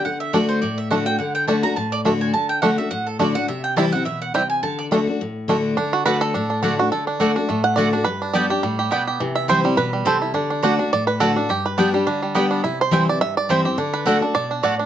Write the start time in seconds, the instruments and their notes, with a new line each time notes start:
0.05 steel-string acoustic guitar D3, mandolin F#5
0.20 mandolin E5
0.33 steel-string acoustic guitar D3 A3 D4 F#4, five-string banjo A3 D4, mandolin D5
0.49 mandolin C5
0.62 steel-string acoustic guitar A2, mandolin D5
0.78 mandolin E5
0.91 steel-string acoustic guitar D3 A3 D4 F#4, five-string banjo A3 D4, mandolin F#5
1.06 steel-string acoustic guitar D4 F#4, mandolin G5
1.19 steel-string acoustic guitar D3, mandolin F#5
1.35 mandolin G5
1.48 steel-string acoustic guitar D3 A3 D4 F#4, five-string banjo A3 D4, mandolin A5
1.63 steel-string acoustic guitar D4 F#4, mandolin A#5
1.76 steel-string acoustic guitar A2, mandolin A5
1.92 mandolin D5
2.05 steel-string acoustic guitar D3 A3 D4 F#4, five-string banjo A3 D4
2.21 mandolin G#5
2.34 steel-string acoustic guitar D3, mandolin A5
2.49 mandolin G5
2.62 steel-string acoustic guitar D3 A3 D4 F#4, five-string banjo A3 D4, mandolin F#5
2.78 steel-string acoustic guitar D4 F#4, mandolin E5
2.91 steel-string acoustic guitar A2, mandolin F#5
3.07 mandolin A4
3.19 steel-string acoustic guitar D3 A3 D4 F#4, five-string banjo A3 D4, mandolin D5
3.35 steel-string acoustic guitar D4 F#4, mandolin F#5
3.48 steel-string acoustic guitar C3, mandolin E5
3.64 mandolin G5
3.76 steel-string acoustic guitar E3 G3 C4 E4, five-string banjo G3 C4 E4, mandolin A5
3.92 steel-string acoustic guitar C4 E4, mandolin F#5
4.05 steel-string acoustic guitar B2, mandolin E5
4.22 mandolin F#5
4.34 steel-string acoustic guitar C3, five-string banjo G3 C4 E4, mandolin G5
4.50 mandolin G#5
4.63 steel-string acoustic guitar D3, mandolin A5
4.79 mandolin D5
4.91 steel-string acoustic guitar D3 A3 D4 F#4, five-string banjo A3 D4
5.07 steel-string acoustic guitar D4 F#4
5.21 steel-string acoustic guitar A2
5.48 steel-string acoustic guitar D3 A3 D4 F#4, five-string banjo A3 D4
5.77 steel-string acoustic guitar D3, five-string banjo D4
5.93 five-string banjo F#4
6.05 steel-string acoustic guitar D3 A3 D4 F#4, mandolin A3 F#4 D5 F#5, five-string banjo B4
6.21 five-string banjo A4
6.34 steel-string acoustic guitar A2, five-string banjo D4
6.50 five-string banjo D4
6.63 steel-string acoustic guitar D3 A3 D4 F#4, mandolin A3 F#4 D5 F#5, five-string banjo D4
6.79 steel-string acoustic guitar D4 F#4, five-string banjo F#4
6.92 steel-string acoustic guitar D3, five-string banjo A4
7.07 five-string banjo D4
7.20 steel-string acoustic guitar D3 A3 D4 F#4, mandolin A3 F#4 D5 F#5, five-string banjo D4
7.36 five-string banjo D4, steel-string acoustic guitar D4 F#4
7.49 steel-string acoustic guitar A2, five-string banjo A3
7.64 five-string banjo F#5
7.76 steel-string acoustic guitar D3 A3 D4 F#4, mandolin A3 F#4 D5 F#5, five-string banjo D5
7.93 five-string banjo D4, steel-string acoustic guitar D4 F#4
8.04 steel-string acoustic guitar G2, five-string banjo B4
8.22 five-string banjo D4
8.33 steel-string acoustic guitar G3 B3 D4 G4, mandolin B3 G4 D5 G5, five-string banjo D5
8.50 steel-string acoustic guitar D4 G4, five-string banjo G4
8.63 steel-string acoustic guitar A2, five-string banjo G3
8.79 five-string banjo G4
8.91 steel-string acoustic guitar B2, mandolin B3 G4 D5 G5, five-string banjo B3
9.07 five-string banjo G4
9.20 steel-string acoustic guitar C3, five-string banjo E3
9.35 five-string banjo E5
9.48 steel-string acoustic guitar E3 G3 C4 E4, mandolin C4 E4 C5 G5, five-string banjo C5
9.64 five-string banjo G3, steel-string acoustic guitar C4 E4
9.77 steel-string acoustic guitar B2, five-string banjo B4
9.93 five-string banjo G3
10.05 steel-string acoustic guitar C3, mandolin C4 E4 C5 G5, five-string banjo A4
10.22 five-string banjo E4
10.34 steel-string acoustic guitar D3, five-string banjo D4
10.50 five-string banjo D4
10.63 steel-string acoustic guitar D3 A3 D4 F#4, mandolin A3 F#4 D5 F#5, five-string banjo D4
10.79 five-string banjo D4, steel-string acoustic guitar D4 F#4
10.93 steel-string acoustic guitar A2, five-string banjo D5
11.07 five-string banjo B4
11.20 steel-string acoustic guitar D3 A3 D4 F#4, mandolin A3 F#4 D5 F#5, five-string banjo A4
11.36 five-string banjo D4, steel-string acoustic guitar D4 F#4
11.49 steel-string acoustic guitar G2, five-string banjo G4
11.66 five-string banjo B4
11.78 steel-string acoustic guitar G3 B3 D4 G4, mandolin B3 G4 D5 G5, five-string banjo D4
11.94 five-string banjo G3, steel-string acoustic guitar D4 G4
12.07 steel-string acoustic guitar D3, five-string banjo D4
12.22 five-string banjo G3
12.35 steel-string acoustic guitar G3 B3 D4 G4, mandolin B3 G4 D5 G5, five-string banjo B3
12.51 five-string banjo D4
12.64 steel-string acoustic guitar C3, five-string banjo E4
12.81 five-string banjo C5
12.91 steel-string acoustic guitar E3 G3 C4 E4, five-string banjo E3, mandolin C4 E4 C5 G5
13.08 steel-string acoustic guitar C4 E4, five-string banjo D5
13.21 steel-string acoustic guitar G2, five-string banjo E5
13.37 five-string banjo D5
13.49 steel-string acoustic guitar E3 G3 C4 E4, mandolin C4 E4 C5 G5, five-string banjo C5
13.65 steel-string acoustic guitar C4 E4, five-string banjo G4
13.78 steel-string acoustic guitar D3, five-string banjo D4
13.94 five-string banjo B4
14.06 steel-string acoustic guitar D3 A3 D4 F#4, mandolin A3 F#4 D5 F#5, five-string banjo A4
14.21 five-string banjo D4, steel-string acoustic guitar D4 F#4
14.35 steel-string acoustic guitar B2, five-string banjo D5
14.51 five-string banjo D4
14.63 steel-string acoustic guitar A2, mandolin A3 F#4 D5 F#5, five-string banjo D5
14.79 five-string banjo D4